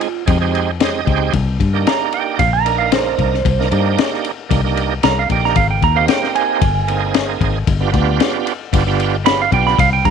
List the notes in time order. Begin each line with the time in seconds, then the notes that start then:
Already playing: F4
0.01 ride
0.26 F2 G#3 C4 D#4 G4, kick, ride
0.41 G#3 C4 D#4 G4
0.55 ride
0.80 G#3 C4 D#4 G4 D#5, snare, ride
1.05 C#2 G#3 C4 D#4 G4 G5, kick, ride
1.33 C2, kick, ride
1.60 G2, kick, ride
1.73 A#3 D4 D#4 G4
1.87 A#5, snare, ride
2.12 G5, ride
2.39 A#1 F5, kick, ride
2.53 A#5
2.65 A#3 D4 D#4 A#4, ride
2.78 F5
2.92 C5, snare, ride
3.19 C2, kick, ride
3.34 snare
3.45 C2, kick, ride
3.59 A#3 D4 D#4 A#4, snare
3.71 G2 A#3 D4 D#4 G4, ride
3.98 snare, ride
4.14 snare
4.25 ride
4.49 C2 A#3 D4 D#4 G4, kick, ride
4.64 A#3 D4 D#4 G4
4.77 ride
5.03 C2 A#3 D4 D#4 A#4 A#5, snare, ride
5.19 F5
5.29 A#1 A#3 D4 D#4 G4 G5, kick, ride
5.45 A#5, snare
5.56 G#1 F5, kick, ride
5.71 G5
5.82 D#2 A#5, kick, ride
5.95 A#3 C4 D#4 G4 F5
6.08 G5, snare, ride
6.24 snare
6.35 G#5, ride
6.61 G1, kick, ride
6.87 A#3 C4 D#4 G#4, ride
7.14 snare, ride
7.40 G#1, kick, ride
7.67 G1, kick, ride
7.80 B3 D4 F4 G4
7.92 D2 B3 D4 F4 G4, kick, ride
8.20 snare, ride
8.47 ride
8.72 G1 B3 D4 F4 G4, kick, ride
8.86 B3 D4 F4 G4
9.00 ride
9.24 B3 D4 F4 G4 B5, snare, ride
9.42 F5
9.51 B1 B3 D4 F4 G4 G5, kick, ride
9.67 B5, snare
9.78 C2 F5, kick, ride
9.93 G5
10.05 G2 A#5, kick, ride